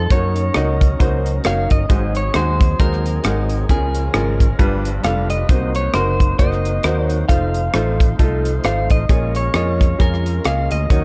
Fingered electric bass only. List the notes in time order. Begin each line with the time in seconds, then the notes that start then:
0.11 F#2
0.56 C#2
1.00 C#2
1.45 F#1
1.71 G1
1.90 G#1
2.35 D#2
2.80 D#2
3.25 G#1
3.70 C#2
4.14 G#1
4.59 G1
5.04 F1
5.49 C2
5.94 F#1
6.39 F#1
6.84 D#2
7.29 F1
7.74 A1
8.20 C2
8.64 G#1
8.91 A1
9.09 A#1
9.54 F2
10.00 F2
10.45 C#2
10.71 D2
10.90 D#2